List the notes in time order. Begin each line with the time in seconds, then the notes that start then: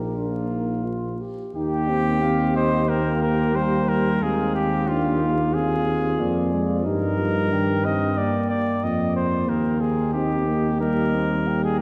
Already playing: A#1 D#4 A#4
0.14 A#3 D4 F4
0.49 D#4
0.85 F4
1.21 G4
1.55 D#2 A#3 D#4 G4 G5
1.90 C4
2.22 C4 F5
2.56 C5 D#5
2.89 A#3 A#4 G5
3.22 A#4
3.55 G3 C5
3.89 A#4
4.21 D#2 G#3 C4 G#4 F5
4.56 G4
4.88 A#3 D4 F4 F5
5.22 D#4
5.54 C4 F4 G#4
5.87 F4
6.19 F2 A#3 D5
6.53 G#3
6.85 G2 G3 D#4 A#4 D#5
7.19 F3
7.51 D#3 D4 G5
7.84 C4 D#5
8.18 A#3 D5
8.50 D5
8.83 F2 A#3 D#5
9.16 C5
9.48 D#2 D#4 A#4 G5
9.81 G#4
10.14 C4 D#4 G4 D#5
10.48 A#3
10.80 G3 A#3 A#4 D#5
11.14 C4
11.47 A#3 G5
11.64 G#4